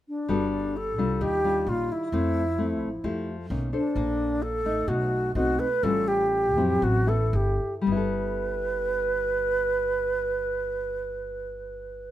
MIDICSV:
0, 0, Header, 1, 4, 480
1, 0, Start_track
1, 0, Key_signature, 1, "major"
1, 0, Tempo, 459067
1, 301, Time_signature, 4, 2, 24, 8
1, 4621, Tempo, 474684
1, 6541, Tempo, 514580
1, 7981, Tempo, 540054
1, 11759, End_track
2, 0, Start_track
2, 0, Title_t, "Alto flute"
2, 0, Program_c, 0, 73
2, 88, Note_on_c, 0, 62, 70
2, 804, Note_on_c, 0, 69, 82
2, 820, Note_off_c, 0, 62, 0
2, 1277, Note_on_c, 0, 67, 99
2, 1293, Note_off_c, 0, 69, 0
2, 1765, Note_on_c, 0, 65, 86
2, 1781, Note_off_c, 0, 67, 0
2, 2006, Note_on_c, 0, 64, 77
2, 2022, Note_off_c, 0, 65, 0
2, 3433, Note_off_c, 0, 64, 0
2, 3921, Note_on_c, 0, 62, 72
2, 4627, Note_on_c, 0, 69, 85
2, 4643, Note_off_c, 0, 62, 0
2, 5089, Note_on_c, 0, 66, 86
2, 5104, Note_off_c, 0, 69, 0
2, 5560, Note_off_c, 0, 66, 0
2, 5566, Note_on_c, 0, 66, 87
2, 5809, Note_on_c, 0, 71, 88
2, 5824, Note_off_c, 0, 66, 0
2, 6051, Note_on_c, 0, 69, 101
2, 6066, Note_off_c, 0, 71, 0
2, 6299, Note_on_c, 0, 67, 88
2, 6314, Note_off_c, 0, 69, 0
2, 7024, Note_on_c, 0, 66, 93
2, 7038, Note_off_c, 0, 67, 0
2, 7258, Note_on_c, 0, 69, 87
2, 7272, Note_off_c, 0, 66, 0
2, 7510, Note_on_c, 0, 67, 77
2, 7524, Note_off_c, 0, 69, 0
2, 7867, Note_off_c, 0, 67, 0
2, 8012, Note_on_c, 0, 71, 90
2, 11759, Note_off_c, 0, 71, 0
2, 11759, End_track
3, 0, Start_track
3, 0, Title_t, "Nylon-string guitar"
3, 0, Program_c, 1, 24
3, 298, Note_on_c, 1, 55, 50
3, 304, Note_on_c, 1, 59, 50
3, 307, Note_on_c, 1, 66, 55
3, 311, Note_on_c, 1, 69, 56
3, 779, Note_off_c, 1, 59, 0
3, 781, Note_off_c, 1, 66, 0
3, 784, Note_off_c, 1, 69, 0
3, 1013, Note_off_c, 1, 55, 0
3, 1026, Note_on_c, 1, 55, 55
3, 1033, Note_on_c, 1, 62, 59
3, 1037, Note_on_c, 1, 65, 63
3, 1265, Note_on_c, 1, 51, 49
3, 1465, Note_off_c, 1, 55, 0
3, 1469, Note_off_c, 1, 62, 0
3, 1470, Note_off_c, 1, 65, 0
3, 1509, Note_on_c, 1, 55, 53
3, 1514, Note_on_c, 1, 62, 52
3, 1515, Note_on_c, 1, 65, 57
3, 2199, Note_off_c, 1, 51, 0
3, 2206, Note_off_c, 1, 55, 0
3, 2207, Note_off_c, 1, 62, 0
3, 2209, Note_off_c, 1, 65, 0
3, 2226, Note_on_c, 1, 57, 53
3, 2230, Note_on_c, 1, 53, 54
3, 2231, Note_on_c, 1, 60, 55
3, 2236, Note_on_c, 1, 64, 54
3, 2532, Note_off_c, 1, 57, 0
3, 2535, Note_off_c, 1, 60, 0
3, 2537, Note_off_c, 1, 64, 0
3, 2700, Note_on_c, 1, 57, 52
3, 2705, Note_on_c, 1, 60, 57
3, 2710, Note_on_c, 1, 64, 52
3, 3009, Note_off_c, 1, 57, 0
3, 3012, Note_off_c, 1, 60, 0
3, 3014, Note_off_c, 1, 64, 0
3, 3161, Note_off_c, 1, 53, 0
3, 3180, Note_on_c, 1, 53, 48
3, 3180, Note_on_c, 1, 57, 50
3, 3185, Note_on_c, 1, 64, 49
3, 3189, Note_on_c, 1, 67, 51
3, 3502, Note_off_c, 1, 57, 0
3, 3503, Note_off_c, 1, 64, 0
3, 3507, Note_off_c, 1, 67, 0
3, 3636, Note_off_c, 1, 53, 0
3, 3662, Note_on_c, 1, 51, 44
3, 3667, Note_on_c, 1, 58, 49
3, 3672, Note_on_c, 1, 61, 57
3, 3862, Note_off_c, 1, 51, 0
3, 3865, Note_off_c, 1, 58, 0
3, 3867, Note_off_c, 1, 61, 0
3, 3896, Note_on_c, 1, 62, 54
3, 3901, Note_on_c, 1, 69, 53
3, 3909, Note_on_c, 1, 72, 57
3, 4144, Note_on_c, 1, 58, 53
3, 4814, Note_off_c, 1, 62, 0
3, 4817, Note_off_c, 1, 69, 0
3, 4821, Note_off_c, 1, 72, 0
3, 4853, Note_off_c, 1, 58, 0
3, 4857, Note_on_c, 1, 57, 60
3, 4864, Note_on_c, 1, 63, 66
3, 5087, Note_on_c, 1, 47, 46
3, 5527, Note_off_c, 1, 57, 0
3, 5530, Note_off_c, 1, 63, 0
3, 5565, Note_on_c, 1, 57, 43
3, 5569, Note_on_c, 1, 60, 42
3, 5572, Note_on_c, 1, 63, 51
3, 5874, Note_off_c, 1, 57, 0
3, 5877, Note_off_c, 1, 60, 0
3, 5877, Note_off_c, 1, 63, 0
3, 6021, Note_off_c, 1, 47, 0
3, 6055, Note_on_c, 1, 45, 56
3, 6057, Note_on_c, 1, 55, 51
3, 6062, Note_on_c, 1, 61, 51
3, 6066, Note_on_c, 1, 65, 54
3, 6738, Note_off_c, 1, 55, 0
3, 6739, Note_off_c, 1, 61, 0
3, 6743, Note_off_c, 1, 65, 0
3, 6774, Note_on_c, 1, 54, 54
3, 6778, Note_on_c, 1, 60, 55
3, 6783, Note_on_c, 1, 64, 61
3, 6987, Note_off_c, 1, 45, 0
3, 7009, Note_on_c, 1, 45, 45
3, 7207, Note_off_c, 1, 54, 0
3, 7208, Note_off_c, 1, 60, 0
3, 7211, Note_off_c, 1, 64, 0
3, 7238, Note_on_c, 1, 59, 52
3, 7242, Note_on_c, 1, 64, 56
3, 7248, Note_on_c, 1, 69, 61
3, 7463, Note_off_c, 1, 45, 0
3, 7937, Note_off_c, 1, 59, 0
3, 7937, Note_on_c, 1, 55, 62
3, 7940, Note_off_c, 1, 64, 0
3, 7941, Note_off_c, 1, 69, 0
3, 7990, Note_on_c, 1, 59, 59
3, 8031, Note_on_c, 1, 64, 63
3, 8072, Note_on_c, 1, 69, 68
3, 11759, Note_off_c, 1, 55, 0
3, 11759, Note_off_c, 1, 59, 0
3, 11759, Note_off_c, 1, 64, 0
3, 11759, Note_off_c, 1, 69, 0
3, 11759, End_track
4, 0, Start_track
4, 0, Title_t, "Upright bass"
4, 0, Program_c, 2, 32
4, 303, Note_on_c, 2, 31, 74
4, 1022, Note_off_c, 2, 31, 0
4, 1022, Note_on_c, 2, 36, 78
4, 1245, Note_off_c, 2, 36, 0
4, 1264, Note_on_c, 2, 39, 82
4, 1709, Note_off_c, 2, 39, 0
4, 1741, Note_on_c, 2, 34, 90
4, 1964, Note_off_c, 2, 34, 0
4, 2220, Note_on_c, 2, 41, 90
4, 2937, Note_off_c, 2, 41, 0
4, 2937, Note_on_c, 2, 33, 68
4, 3161, Note_off_c, 2, 33, 0
4, 3178, Note_on_c, 2, 41, 82
4, 3625, Note_off_c, 2, 41, 0
4, 3660, Note_on_c, 2, 35, 90
4, 3883, Note_off_c, 2, 35, 0
4, 4135, Note_on_c, 2, 34, 88
4, 4855, Note_off_c, 2, 34, 0
4, 4855, Note_on_c, 2, 33, 75
4, 5073, Note_off_c, 2, 33, 0
4, 5083, Note_on_c, 2, 35, 90
4, 5527, Note_off_c, 2, 35, 0
4, 5564, Note_on_c, 2, 35, 91
4, 5787, Note_off_c, 2, 35, 0
4, 6049, Note_on_c, 2, 33, 88
4, 6774, Note_off_c, 2, 33, 0
4, 6774, Note_on_c, 2, 41, 78
4, 6991, Note_off_c, 2, 41, 0
4, 7009, Note_on_c, 2, 33, 91
4, 7454, Note_off_c, 2, 33, 0
4, 7485, Note_on_c, 2, 31, 96
4, 7713, Note_off_c, 2, 31, 0
4, 7984, Note_on_c, 2, 31, 80
4, 11759, Note_off_c, 2, 31, 0
4, 11759, End_track
0, 0, End_of_file